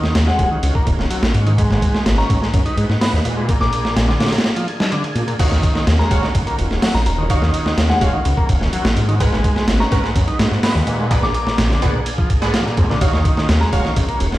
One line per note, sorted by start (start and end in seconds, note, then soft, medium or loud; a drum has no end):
0.00 0.13 D#2 soft
0.00 0.14 D#3 medium
0.00 1.54 D#3 medium
0.00 1.54 C#4 medium
0.00 1.54 F4 medium
0.00 1.55 F#4 medium
0.00 snare medium
0.15 0.32 D#2 loud
0.15 snare loud
0.15 ride medium
0.27 0.50 G#3 medium
0.27 0.35 F#5 medium
0.27 snare medium
0.39 0.47 D#1 medium
0.39 0.47 F#5 medium
0.39 kick medium
0.39 ride medium
0.51 0.58 D#3 medium
0.63 0.71 C#2 medium
0.63 ride medium
0.75 0.86 A#3 medium
0.75 kick medium
0.87 0.95 D#1 medium
0.87 kick medium
0.87 ride medium
0.99 1.07 D#1 medium
0.99 snare soft
1.10 1.22 F#3 loud
1.10 ride medium
1.22 1.30 A#1 medium
1.22 snare loud
1.34 1.64 G#2 medium
1.34 ride medium
1.47 1.53 D#3 medium
1.47 ride soft
1.58 3.47 G#3 medium
1.58 2.05 G#3 medium
1.58 3.47 D#4 medium
1.58 3.47 F#4 medium
1.58 3.47 B4 medium
1.58 kick loud
1.58 ride medium
1.70 1.78 G#1 loud
1.70 snare soft
1.82 kick medium
1.82 ride medium
1.95 snare soft
2.06 2.22 G#1 loud
2.06 snare loud
2.06 ride medium
2.18 2.41 C#4 medium
2.18 2.34 A#5 medium
2.18 snare soft
2.30 2.38 G#2 medium
2.30 kick medium
2.30 ride medium
2.42 2.48 G#3 medium
2.42 snare soft
2.54 2.62 F#2 medium
2.54 kick loud
2.54 ride medium
2.66 2.77 D#4 medium
2.66 ride soft
2.77 2.85 G#2 medium
2.77 ride medium
2.89 2.97 G#2 medium
2.89 snare soft
3.01 3.13 B3 loud
3.01 snare loud
3.01 open hi-hat medium
3.13 3.21 D#2 medium
3.13 snare soft
3.25 3.55 A#2 medium
3.25 ride medium
3.37 3.43 G#3 medium
3.49 3.95 A#2 medium
3.49 5.37 A#3 medium
3.49 5.37 D4 medium
3.49 5.37 G#4 medium
3.49 kick loud
3.49 ride medium
3.61 3.69 A#1 loud
3.61 3.68 D6 medium
3.61 snare soft
3.72 3.80 D6 medium
3.72 ride medium
3.85 3.94 A#1 soft
3.85 snare medium
3.96 4.13 A#1 loud
3.96 snare loud
3.96 ride medium
4.08 4.31 D3 medium
4.08 snare medium
4.20 4.28 A#2 medium
4.20 snare medium
4.20 ride medium
4.26 snare medium
4.26 ride medium
4.32 4.39 A#2 medium
4.32 snare medium
4.32 ride medium
4.38 snare medium
4.38 ride medium
4.44 snare loud
4.56 4.67 F3 medium
4.56 ride medium
4.68 ride soft
4.80 snare loud
4.92 5.03 D3 loud
4.92 ride medium
5.04 ride soft
5.15 5.24 A#2 medium
5.15 ride medium
5.27 5.34 A#2 medium
5.27 ride soft
5.39 5.49 D#2 soft
5.39 9.16 D#3 medium
5.39 5.86 D#3 medium
5.39 9.16 C#4 medium
5.39 9.16 F4 medium
5.39 11.06 F#4 medium
5.39 5.56 F#4 medium
5.39 5.56 C#5 medium
5.39 5.56 F5 medium
5.39 kick loud
5.39 crash medium
5.39 ride medium
5.51 5.59 D#2 loud
5.51 snare soft
5.63 kick loud
5.63 ride medium
5.75 snare medium
5.87 6.03 D#2 loud
5.87 snare loud
5.87 ride medium
5.99 6.22 G#3 medium
5.99 6.15 A#5 medium
5.99 snare soft
6.11 6.19 D#1 medium
6.11 6.28 F#4 medium
6.11 6.28 C#5 medium
6.11 6.28 F5 loud
6.11 kick medium
6.11 ride medium
6.23 6.29 D#3 medium
6.23 snare soft
6.35 6.43 C#2 medium
6.35 kick loud
6.35 ride medium
6.47 6.58 A#3 medium
6.47 ride soft
6.58 6.67 D#1 medium
6.58 ride medium
6.71 6.78 D#1 medium
6.71 snare soft
6.82 6.94 F#3 loud
6.82 snare loud
6.82 open hi-hat medium
6.94 7.02 A#1 medium
6.94 7.02 A#5 medium
6.94 snare soft
7.06 7.36 D#1 medium
7.06 7.14 A#5 medium
7.06 ride medium
7.18 7.24 D#3 medium
7.30 7.76 D#3 medium
7.30 7.41 F#4 medium
7.30 7.41 C#5 medium
7.30 7.41 F5 medium
7.30 kick loud
7.30 ride medium
7.42 7.50 D#2 loud
7.42 snare soft
7.54 ride medium
7.66 7.75 D#2 soft
7.66 snare medium
7.77 7.94 D#2 loud
7.77 snare loud
7.77 ride medium
7.89 8.12 G#3 medium
7.89 7.97 F#5 medium
7.89 snare medium
8.01 8.09 D#1 medium
8.01 8.12 F#4 medium
8.01 8.12 C#5 medium
8.01 8.12 F5 medium
8.01 8.09 F#5 medium
8.01 kick medium
8.01 ride medium
8.13 8.20 D#3 medium
8.25 8.33 C#2 medium
8.25 ride medium
8.37 8.48 A#3 medium
8.37 kick loud
8.49 8.57 D#1 medium
8.49 kick loud
8.49 ride medium
8.61 8.69 D#1 medium
8.61 snare soft
8.73 8.84 F#3 loud
8.73 ride medium
8.85 8.93 A#1 medium
8.85 snare loud
8.96 9.26 G#2 medium
8.96 ride medium
9.08 9.15 D#3 medium
9.08 ride soft
9.20 9.67 G#3 medium
9.20 11.09 G#3 medium
9.20 11.09 D#4 medium
9.20 9.37 A#4 medium
9.20 9.37 B4 medium
9.20 11.09 B4 medium
9.20 9.37 F#5 medium
9.20 kick loud
9.20 ride medium
9.32 9.40 G#1 loud
9.32 snare soft
9.44 kick loud
9.44 ride medium
9.56 snare medium
9.68 9.84 G#1 loud
9.68 snare loud
9.68 ride medium
9.80 10.03 C#4 medium
9.80 9.96 A#5 medium
9.80 snare soft
9.92 10.00 G#2 medium
9.92 10.09 A#4 medium
9.92 10.09 B4 medium
9.92 10.09 F#5 loud
9.92 kick loud
9.92 ride medium
10.04 10.10 G#3 medium
10.04 snare soft
10.16 10.24 F#2 medium
10.16 kick loud
10.16 ride medium
10.28 10.39 D#4 medium
10.28 ride soft
10.39 10.47 G#2 medium
10.39 snare loud
10.39 ride medium
10.51 10.59 G#2 medium
10.51 snare soft
10.63 10.75 B3 loud
10.63 snare loud
10.63 open hi-hat medium
10.75 10.83 D#2 medium
10.75 snare soft
10.87 11.17 A#2 medium
10.87 ride medium
10.99 11.05 G#3 medium
11.11 11.57 A#2 medium
11.11 12.99 A#3 medium
11.11 12.99 D4 medium
11.11 12.99 G#4 medium
11.11 11.22 G#4 medium
11.11 11.22 B4 medium
11.11 11.22 D5 medium
11.11 11.22 F#5 medium
11.11 kick loud
11.11 ride medium
11.23 11.31 A#1 loud
11.23 11.30 D6 medium
11.23 snare soft
11.34 11.42 D6 medium
11.34 ride medium
11.47 11.56 A#1 soft
11.47 snare medium
11.58 11.75 A#1 loud
11.58 snare loud
11.58 ride medium
11.70 11.93 D3 medium
11.70 snare medium
11.82 11.90 A#2 medium
11.82 11.93 G#4 medium
11.82 11.93 B4 medium
11.82 11.93 D5 medium
11.82 11.93 F#5 medium
11.82 kick medium
11.82 ride medium
11.94 12.01 A#2 medium
12.06 ride medium
12.18 12.29 F3 medium
12.18 kick loud
12.30 kick loud
12.30 ride medium
12.42 12.52 G#2 medium
12.42 12.52 G#4 medium
12.42 12.52 B4 medium
12.42 12.52 D5 medium
12.42 12.52 F#5 medium
12.42 snare soft
12.54 12.64 F3 medium
12.54 snare loud
12.54 ride medium
12.66 12.77 A#2 medium
12.66 snare soft
12.77 12.86 F2 loud
12.77 12.88 G#2 medium
12.77 kick medium
12.77 ride medium
12.90 12.97 A#2 medium
12.90 13.00 D3 loud
12.90 snare soft
13.01 13.11 D#2 soft
13.01 13.48 D#3 medium
13.01 14.38 D#3 medium
13.01 14.38 C#4 medium
13.01 14.38 F4 medium
13.01 13.18 F#4 medium
13.01 14.38 F#4 medium
13.01 13.18 C#5 medium
13.01 13.18 F5 medium
13.01 kick loud
13.01 ride medium
13.13 13.21 D#2 loud
13.13 snare soft
13.25 kick loud
13.25 ride medium
13.37 snare medium
13.49 13.65 D#2 loud
13.49 snare loud
13.49 ride medium
13.61 13.83 G#3 medium
13.61 13.77 A#5 medium
13.61 snare soft
13.73 13.81 D#1 medium
13.73 13.90 F#4 medium
13.73 13.90 C#5 medium
13.73 13.90 F5 loud
13.73 kick medium
13.73 ride medium
13.85 13.91 D#3 medium
13.85 snare soft
13.96 14.05 C#2 medium
13.96 kick loud
13.96 ride medium
14.09 14.20 A#3 medium
14.09 ride soft
14.20 14.28 D#1 medium
14.20 ride medium
14.32 14.38 D#1 medium
14.32 snare soft